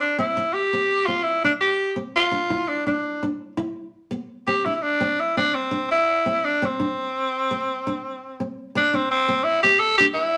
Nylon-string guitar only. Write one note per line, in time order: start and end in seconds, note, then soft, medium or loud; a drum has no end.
0.18 0.33 C4 medium
0.37 muted nylon-string guitar stroke medium
0.73 1.02 C4 medium
1.08 1.37 C4 medium
1.44 1.73 D4 medium
1.96 2.26 C4 medium
2.31 2.47 D4 medium
2.50 2.80 E4 medium
2.87 3.16 D4 medium
3.23 3.52 D4 medium
3.57 3.87 E4 medium
4.11 4.41 B3 medium
4.47 4.62 C4 medium
4.66 4.95 D4 medium
5.00 5.30 C4 medium
5.37 5.66 C4 medium
5.71 6.01 D4 medium
6.26 6.55 C4 medium
6.62 6.76 C4 medium
6.80 7.09 D4 medium
7.51 7.80 C4 medium
7.87 8.16 D4 medium
8.40 8.69 C4 medium
8.75 muted nylon-string guitar stroke medium
8.93 9.23 D4 medium
9.28 9.58 C4 medium
9.64 9.93 C4 medium
10.00 10.29 D4 medium